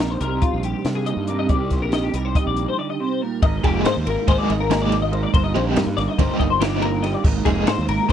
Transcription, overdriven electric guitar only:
3.64 G#3 A#3 D#4 G#4
4.28 G#3 A#3 D#4 G#4
4.70 G#3 A#3 D#4 G#4
5.55 G3 C4 D#4 G4
6.19 G3 C4 D#4 G4
6.61 G3 C4 D#4 G4
7.45 G#3 A#3 D#4 G#4
8.09 G#3 A#3

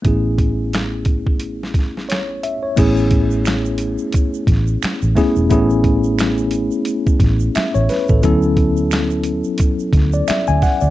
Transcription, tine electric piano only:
0.02 A3 B3 C#4 E4
0.08 G#4
2.09 C#5
2.43 E5
2.63 C#5
2.76 A3 B3 C#4 E4 G#4
5.15 A3 B3 C#4 E4 G#4
5.50 A3 B3 C#4 E4 G#4
7.56 E5
7.75 C#5
7.90 B4
8.09 A4
8.22 F#3 B3 C#4 E4 A4
10.14 D5
10.28 E5
10.48 G#5
10.63 F#5
10.81 D5

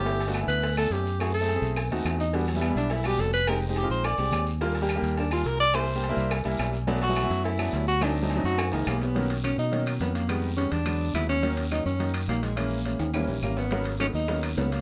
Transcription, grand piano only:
0.05 A3 B3 D4 E4
0.27 A3 B3 D4 F#4
0.41 A3 B3 D4 E4
0.77 A3 B3 D4 E4
1.19 A3 C4 E4 G#4
1.41 A3 C4 E4 G#4
1.55 A3 C4 E4 G#4
1.91 A3 C4 D#4 F#4
2.34 G3 B3 D4 F#4
2.55 G3 B3 D4 E4
2.69 G3 B3 D4 E4
3.05 G3 B3 D4 F#4
3.48 G#3 C4 D#4 G4
3.69 G#3 C4 D#4 G4
3.83 G#3 C4 D#4 F4
4.18 G#3 C4 D4 G4
4.61 G3 A#3 D4 F4
4.82 G3 A#3 D4 G4
4.95 G3 A#3 D4 G4
5.32 G3 A#3 D4 F4
5.73 G3 A#3 D4 E4
5.95 G3 A#3 D4 G4
6.09 G3 A#3 D4 E4
6.44 G3 A#3 D4 E4
6.87 F#3 A3 B3 D4
7.09 F#3 A3 B3 E4
7.23 F#3 A3 B3 E4
7.58 F#3 A3 B3 D4
8.01 F#3 A3 C4 D#4
8.22 F#3 A3 C4 D#4
8.35 F#3 A3 C4 D#4
8.72 E3 G#3 A#3 D#4
9.15 D#3 F#3 A#3 C#4
9.43 D#3 F#3 A#3 C#4
9.71 D#3 F#3 A#3 C#4
10.01 D#3 F#3 A#3 C#4
10.28 D#3 G3 G#3 B3
10.56 D#3 G3 G#3 B3
10.85 D3 F#3 G#3 B3
11.15 D3 F#3 G#3 B3
11.42 D#3 F#3 A#3 C#4
11.71 D#3 F#3 A#3 C#4
11.99 D#3 F#3 A#3 D#4
12.28 D#3 F#3 A#3 D#4
12.56 E3 G#3 A#3 C#4
12.85 E3 G#3 A#3 C#4
13.14 E3 G3 A#3 C#4
13.43 E3 G3 A#3 C#4
13.72 F#3 A#3 B3 C#4
14.00 F#3 A#3 B3 D#4
14.29 F#3 A#3 B3 C#4
14.57 F#3 A#3 B3 C#4

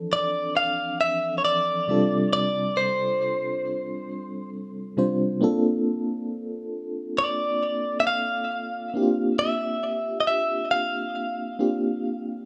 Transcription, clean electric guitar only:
0.13 D5
0.57 F5
1.01 E5
1.38 C#5
1.45 D5
2.33 D5
2.77 C5
7.18 D5
8.00 E5
8.07 F5
9.39 E5
10.20 D#5
10.27 E5
10.71 F5

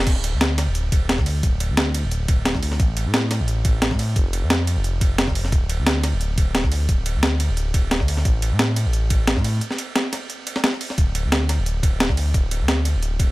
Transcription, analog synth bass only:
0.07 D1
0.33 D2
0.67 D1
0.92 D1
1.18 D2
1.43 D1
1.70 D2
2.04 D1
2.29 D1
2.55 D2
2.80 A1
3.06 A2
3.40 A1
3.65 A1
3.91 A2
4.16 F1
4.42 F2
4.76 F1
5.01 F1
5.27 F1
5.52 D1
5.78 D2
6.13 D1
6.38 D1
6.64 D2
6.89 D1
7.15 D2
7.49 D1
7.74 D1
8.00 D2
8.25 A1
8.51 A2
8.85 A1
9.10 A1
9.37 A2
10.98 D1
11.24 D2
11.58 D1
11.83 D1
12.09 D2
12.34 D1
12.61 D2
12.95 D1
13.20 D1

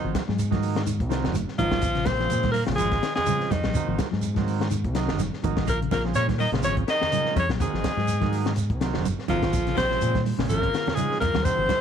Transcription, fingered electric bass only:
0.04 G#1
0.29 G#2
1.00 C2
1.25 F#1
1.59 G#1
1.83 A#1
2.07 A#1
2.32 A#2
2.68 A#1
2.79 G#1
3.52 F2
3.65 A#1
3.75 muted fingered electric bass stroke
3.88 G#1
4.13 G#2
4.85 C2
5.08 F#1
5.44 G#1
5.68 A#1
5.92 A#1
6.15 A#2
6.52 A#1
6.63 G#1
7.36 F2
7.50 A#1
7.60 muted fingered electric bass stroke
7.73 G#1
7.97 G#2
8.70 C2
8.94 F#1
9.29 G#1
9.53 A#1
9.78 A#1
10.02 A#2
10.39 A#1
10.50 G#1
11.22 F2
11.35 D#2
11.58 G#1

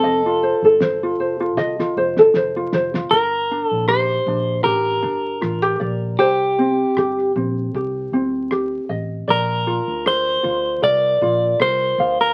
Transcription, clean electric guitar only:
Already playing: A4
3.11 A#4
3.66 A4
3.88 C5
4.64 A#4
6.19 G4
9.30 A#4
10.07 C5
10.84 D5
11.62 C5
12.21 A#4

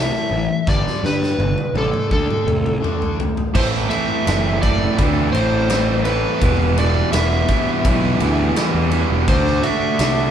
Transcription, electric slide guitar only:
0.00 E5
0.69 D5
1.06 B4
1.78 A4
2.12 A4
3.56 C5
3.90 E5
4.63 D5
5.33 C5
6.05 B4
6.79 D5
7.13 E5
9.29 C5
9.63 E5

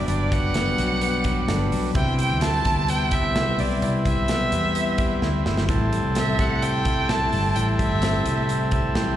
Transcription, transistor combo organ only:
Already playing: G3 D4 B4
1.95 C4 E4 G4 B4
5.68 C4 E4 G4 A4
8.72 E5
8.96 G5

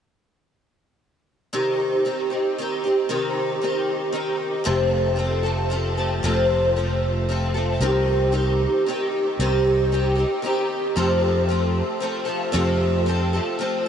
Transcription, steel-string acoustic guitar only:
1.53 C3 D#3 C4 D#4 G4
2.05 D#3 C4 D#4 G4
2.30 C4 D#4 G4
2.58 D#3 C4 D#4 G4
2.84 C4 D#4 G4
3.09 C3 D#3 C4 D#4 G4
3.62 D#3 C4 D#4 G4
4.12 D#3 C4 D#4 G4
4.64 F2 C3 F3 A3 C4 A4
5.16 F3 A3 C4 A4
5.43 F3 A3 C4 A4
5.70 F3 A3 C4 A4
5.97 F3 A3 C4 A4
6.23 F2 C3 F3 A3 C4 A4
6.76 F3 A3 C4 A4
7.29 F3 A3 C4 A4
7.54 A3 C4 A4
7.58 F3
7.81 C3 D#3 C4 D#4 G4
8.32 D#3 C4 D#4 G4
8.86 D#3 C4 D#4 G4
9.40 C3 D#3 C4 D#4 G4
9.92 D#3 C4 D#4 G4
10.15 C4 D#4 G4
10.42 D#3 C4 D#4 G4
10.96 F2 C3 F3 A3 C4 A4
11.49 F3 A3 C4 A4
12.00 F3 A3 C4 A4
12.25 F3 A3 C4 A4
12.52 F2 C3 F3 A3 C4 A4
13.06 F3 A3 C4 A4
13.33 F3 A3 C4 A4
13.59 F3 A3 C4 A4

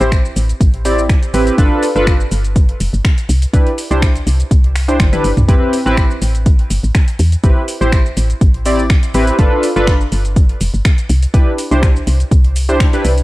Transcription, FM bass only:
0.01 A1
0.36 A1
0.61 A1
1.34 A1
1.58 G1
1.96 G1
2.31 G1
2.80 F1
2.93 G1
3.29 C2
3.53 C2
3.91 C2
4.27 C2
4.51 C2
5.00 G1
5.24 G1
5.37 C2
5.49 A1
5.86 A1
6.22 A1
6.70 G1
6.83 A1
7.19 E2
7.44 A1
7.81 A1
8.17 A1
8.41 A1
9.14 A1
9.39 G1
9.76 G1
10.12 G1
10.61 F1
10.74 G1
11.10 C2
11.34 C2
11.71 C2
12.07 C2
12.31 C2
13.05 C2

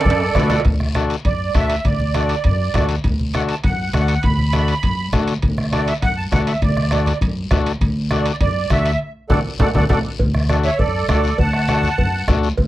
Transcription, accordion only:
Already playing: A4 D5
1.26 D5
1.55 E5
1.86 D5
2.45 D5
3.36 F#5
3.50 A5
3.64 F#5
3.94 F#5
4.22 B5
5.73 D5
5.88 E5
6.02 F#5
6.17 A5
6.32 F#5
6.47 E5
6.62 D5
8.12 D5
8.32 D5
8.42 D5
8.72 E5
9.30 A4 D5 F#5
9.60 A4 D5 F#5
9.75 A4 D5 F#5
9.89 A4 D5 F#5
10.49 A4 D5
10.64 C#5 E5
10.78 A4 D5
11.08 A4 D5
11.38 F#5 A5

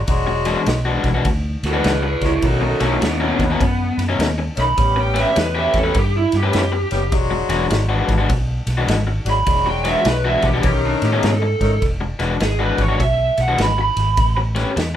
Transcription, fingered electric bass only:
0.08 E1
0.67 B1
1.04 B1
1.25 D2
1.63 D2
1.85 C#2
2.21 C#2
2.42 B1
2.80 B1
3.02 D#2
3.39 D#2
3.60 F#2
3.98 F#2
4.19 D#2
4.57 B1
4.78 A1
5.37 E2
5.74 E2
5.95 G2
6.33 G2
6.54 F#2
6.92 F#1
7.12 E1
7.49 E1
7.71 G#1
8.08 G#1
8.30 B1
8.67 B1
8.87 G#1
9.25 G#1
9.47 E1
10.05 B1
10.43 B1
10.64 B1
11.02 A2
11.24 G#2
11.61 G#2
11.82 E1
12.20 E1
12.41 G#1
12.78 G#1
13.00 B1
13.38 B1
13.58 G#1
13.97 G#1
14.18 A1
14.76 E2

